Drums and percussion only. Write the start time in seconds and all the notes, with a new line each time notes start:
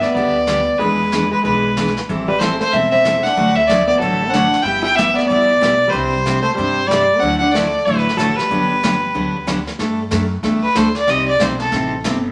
0.03 snare
0.15 brush sweep
0.47 snare, hi-hat pedal
0.79 brush sweep
1.12 snare, hi-hat pedal
1.44 brush sweep
1.77 snare, hi-hat pedal
1.87 snare
1.97 snare
1.98 snare
2.09 brush sweep
2.41 snare, hi-hat pedal
2.61 snare
2.73 brush sweep
3.05 snare, hi-hat pedal
3.25 snare
3.37 brush sweep
3.70 snare, hi-hat pedal
4.01 brush sweep
4.33 snare, hi-hat pedal
4.54 snare
4.66 brush sweep
4.98 snare, hi-hat pedal
5.18 snare
5.31 brush sweep
5.63 snare, hi-hat pedal
5.95 brush sweep
6.26 snare, hi-hat pedal
6.59 brush sweep
6.91 snare, hi-hat pedal
7.23 brush sweep
7.55 snare, hi-hat pedal
7.87 brush sweep
7.98 snare
8.09 snare
8.19 snare, hi-hat pedal
8.39 snare
8.51 brush sweep
8.84 snare, hi-hat pedal
9.15 brush sweep
9.47 snare, hi-hat pedal
9.67 snare
9.79 brush sweep, snare
10.11 snare, hi-hat pedal
10.43 brush sweep, snare
10.75 snare, hi-hat pedal
10.95 snare
11.07 brush sweep, snare
11.40 snare, hi-hat pedal
11.60 snare
11.72 brush sweep, snare
12.04 snare, hi-hat pedal